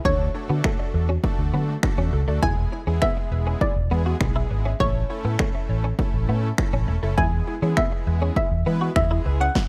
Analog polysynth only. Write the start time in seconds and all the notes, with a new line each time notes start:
0.05 A3 D4 F#4 A4
0.34 A3 D4 F#4 A4
1.24 A3 D4 F#4 A4
1.83 A3 D4 F#4 A4
2.28 A3 D4 F#4 A4
2.42 G#3 B3 E4
2.87 G#3 B3 E4 G#4
3.91 G#3 B3 E4 G#4
4.21 G#3 B3 E4 G#4
4.80 A3 C#4 E4 A4
5.10 A3 C#4 E4 A4
5.99 A3 C#4 E4 A4
6.58 A3 C#4 E4 A4
7.03 A3 C#4 E4 A4
7.18 G#3 B3 E4 G#4
7.62 G#3 B3 E4 G#4
8.66 G#3 B3 E4 B4
8.96 G#3 B3 E4 G#4